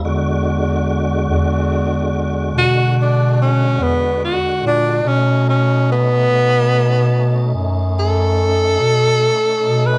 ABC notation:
X:1
M:12/8
L:1/16
Q:3/8=48
K:E
V:1 name="Tenor saxophone"
z12 F2 =D2 C2 B,2 F2 D2 | C2 C2 B,8 z2 A8- A B |]
V:2 name="Tonewheel organ"
[=D,G,F]24 | [A,CD]24 |]
V:3 name="Bass clarinet" clef=bass
E,,6 E,,6 B,,6 E,,2 z2 ^A,,2 | B,,6 B,,6 F,,6 B,,2 z2 B,,2 |]